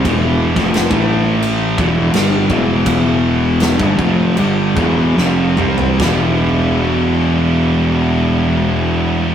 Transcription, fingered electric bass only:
X:1
M:4/4
L:1/16
Q:1/4=77
K:Ephr
V:1 name="Fingered electric bass" clef=bass
E,,,3 F,,,2 A,,,4- A,,, E,,,2 G,,,2 E,,,2- | E,,,4- E,,, G,,, F,,,2 G,,,2 E,,,2 F,,,2 C,,2 | E,,,16 |]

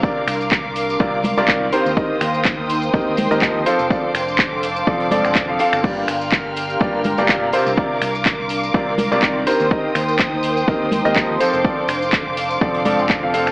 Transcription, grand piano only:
X:1
M:4/4
L:1/16
Q:"Swing 16ths" 1/4=124
K:Dphr
V:1 name="Grand piano"
[C,CFBd] z6 z [C,CFBd] z2 [C,CFBd] [E,CFBd] z [E,CGBc] z | [E,CGBe] z6 z [E,CGBe] z2 [E,CGBe] [F,CGBe] z [F,CFAc] z | [F,CFAd] z6 z [F,CFAd] z [F,CFAd]3 [F,CFAf] [CFAf] z | [G,,B,FGd] z6 z [G,,B,FGd] z2 [G,,B,FGd] [C,B,FG] z [C,CFBc] z |
[C,CFBd] z6 z [C,CFBd] z2 [C,CFBd] [E,CFBd] z [E,CGBc] z | [E,CGBe] z6 z [E,CGBe] z2 [E,CGBe] [F,CGBe] z [F,CFAc] z | [F,CFAd] z6 z [F,CFAd] z [F,CFAd]3 [F,CFAf] [CFAf] z |]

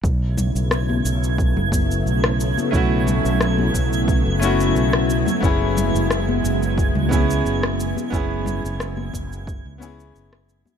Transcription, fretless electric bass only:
X:1
M:4/4
L:1/16
Q:"Swing 16ths" 1/4=89
K:F#dor
V:1 name="Fretless electric bass" clef=bass
B,,,3 B,,,3 B,,,3 F,,,3 B,,,3 z | B,,,3 B,,,3 B,,,3 F,,,3 B,,,3 z | F,,,3 F,,,3 F,,,3 C,,3 F,,,3 z | F,,,3 F,,,3 F,,,3 C,,3 F,,,3 z |]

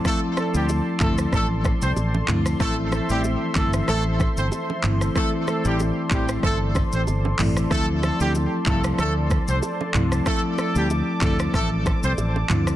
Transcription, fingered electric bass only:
X:1
M:4/4
L:1/16
Q:"Swing 16ths" 1/4=94
K:Dm
V:1 name="Fingered electric bass" clef=bass
z3 D,,2 z D,,2 A,,,3 C,, A,,,2 D,,2 | A,,,3 A,,,2 z G,,,2 A,,,3 G,,, z2 G,,,2 | z3 A,,,2 z A,,,2 G,,,3 A,,, G,,,2 A,,,2 | D,,3 D,,2 z C,,2 D,,3 C,, z2 C,,2 |
z3 D,,2 z D,,2 A,,,3 C,, A,,,2 D,,2 |]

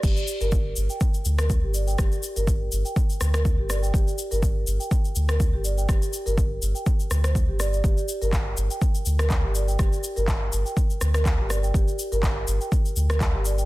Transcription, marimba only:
X:1
M:4/4
L:1/16
Q:"Swing 16ths" 1/4=123
K:Gm
V:1 name="Marimba"
G z2 B z3 g z3 B z G d g | G z2 B z3 g z3 B z G d g | G z2 B z3 g z3 B z G d g | G z2 B z3 g z3 c z G d d |
G z2 B z3 g z3 B z G d g | G z2 B z3 g z3 B z G d g | G z2 B z3 g z3 B z G d g |]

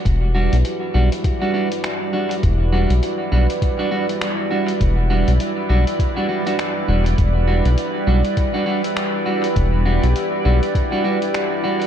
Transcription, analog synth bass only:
X:1
M:4/4
L:1/16
Q:"Swing 16ths" 1/4=101
K:Em
V:1 name="Analog synth bass" clef=bass
E,,,3 B,,, z2 B,,, z8 z | E,,,3 B,,, z2 B,,, z8 z | E,,,3 B,,, z2 B,,, z6 z E,,,2 | E,,,3 B,,, z2 B,,, z8 z |
E,,,3 B,,, z2 B,,, z8 z |]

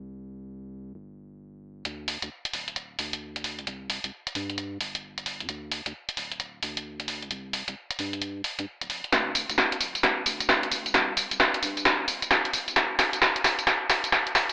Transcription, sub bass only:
X:1
M:4/4
L:1/16
Q:"Swing 16ths" 1/4=132
K:Cdor
V:1 name="Sub bass" clef=bass
C,,8 G,,,8 | D,,3 D,, z2 D,,,4 D,,4- D,, C,, | C,,3 C,, z2 G,,4 G,,,4- G,,, G,, | D,,3 D,, z2 D,,,4 D,,4- D,, C,, |
C,,3 C,, z2 G,,4 z G,, z D,,, F,,, z | D,,3 D,, z2 D,,,4 D,,4- D,, C,, | C,,3 C,, z2 G,,4 G,,,4- G,,, G,, | D,,3 D,, z2 D,,,4 D,,4- D,, C,, |]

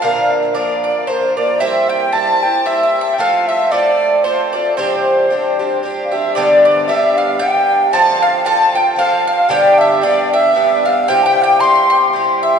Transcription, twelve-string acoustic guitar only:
X:1
M:3/4
L:1/8
Q:"Swing" 1/4=114
K:Cmix
V:1 name="Twelve-string acoustic guitar"
[B,,D,F,B,DB]2 [F,B,DB]2 [F,B,DB] [F,B,DB] | [C,G,CEc]2 [G,CEc] [CEc] [G,CEc]2 | [F,A,CFA]2 [A,CFA]2 [A,CFA] [CFA] | [C,E,G,CDG]2 [G,CDG] [G,CDG] [G,CDG] [G,CDG] |
[K:Gmix] [G,,D,G,B,DG]2 [G,B,DG]2 [G,B,DG]2 | [F,CFA]2 [F,CFA] [CFA] [F,CFA]2 | [G,,D,G,B,DG]2 [G,B,DG]2 [G,B,DG] [G,B,DG] | [C,G,CEG]2 [G,CEG]2 [G,CEG]2 |]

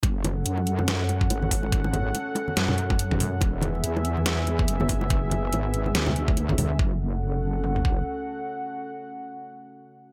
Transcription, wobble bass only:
X:1
M:4/4
L:1/8
Q:"Swing 16ths" 1/4=142
K:F#m
V:1 name="Wobble bass" clef=bass
F,,,2 F,,4 G,,,2- | G,,,2 z2 F,,4 | E,,,2 E,,4 F,,,2- | F,,,2 G,,,2 D,,4 |
F,,,6 z2 | z8 |]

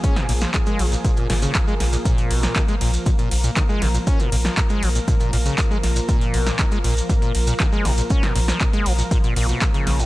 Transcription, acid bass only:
X:1
M:4/4
L:1/16
Q:1/4=119
K:Bbm
V:1 name="Acid bass" clef=bass
D B,, B,, F, A,, A, F, B,, B,, B,, B,, D, z A, z B,, | B,,2 _C, B,, E, A, B,, z B,, B,, z B,, E, A, C, B,, | D B,, B,, F, A,, A, F, B,, B,, B,, B,, D, z A, z B,, | B,,2 _C, B,, E, A, B,, z B,, B,, z B,, E, A, C, B,, |
D B,, B,, F, A,, A, F, B,, B,, B,, B,, _C, z D,2 A,, |]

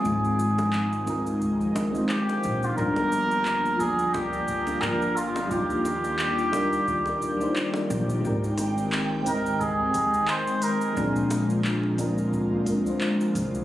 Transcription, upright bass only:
X:1
M:4/4
L:1/8
Q:"Swing 16ths" 1/4=88
K:Ablyd
V:1 name="Upright bass" clef=bass
A,,,4- A,,, z2 B,,, | G,,,4- G,,, z G,,,2 | E,,4 z3 B,,, | A,,,4- A,,, E,, z2 |
B,,,4- B,,, z2 C,, |]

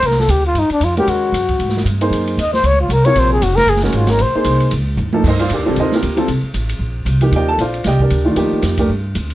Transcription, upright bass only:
X:1
M:4/4
L:1/8
Q:"Swing" 1/4=230
K:Eblyd
V:1 name="Upright bass" clef=bass
C,,2 D,,2 G,, z F,,2 | E,,2 _G,,2 _A,,2 =G,,2 | _G,,2 E,,2 _D,,2 C,,2 | B,,,2 F,,,2 _G,,,2 _A,,,2 |
B,,, z C,,2 _D,,2 E,,2 | G,,2 (3F,, E,, C,, E,,2 D,,2 | C,, z A,,,2 B,,,2 C,,2 | E,,2 B,,,2 C,,2 D,,2 |
E,, z F,,2 G,,2 D,,2 |]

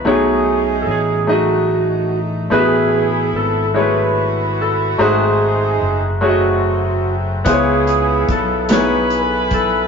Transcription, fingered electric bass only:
X:1
M:6/8
L:1/8
Q:3/8=49
K:C#m
V:1 name="Fingered electric bass" clef=bass
B,,,2 A,,,4 | A,,,2 G,,,4 | G,,,2 F,,,4 | C,,2 B,,,4 |]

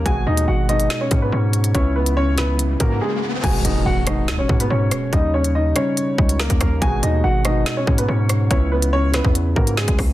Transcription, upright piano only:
X:1
M:4/4
L:1/16
Q:1/4=142
K:G#m
V:1 name="Upright piano"
[Gg]2 [Dd]2 [Ff]2 [Dd]3 [Cc]2 [B,B] [Cc]4 | [Cc]2 [B,B]2 [Cc]2 [B,B]2 z2 [A,A]2 [G,G]2 z2 | [Gg]2 [Dd]2 [Ff]2 [Dd]3 [Cc]2 [B,B] [Cc]4 | [Dd]2 [Cc]2 [Dd]2 [Cc]6 [A,A]4 |
[Gg]2 [Dd]2 [Ff]2 [Dd]3 [Cc]2 [B,B] [Cc]4 | [Cc]2 [B,B]2 [Cc]2 [B,B]2 z2 [A,A]2 [G,G]2 z2 |]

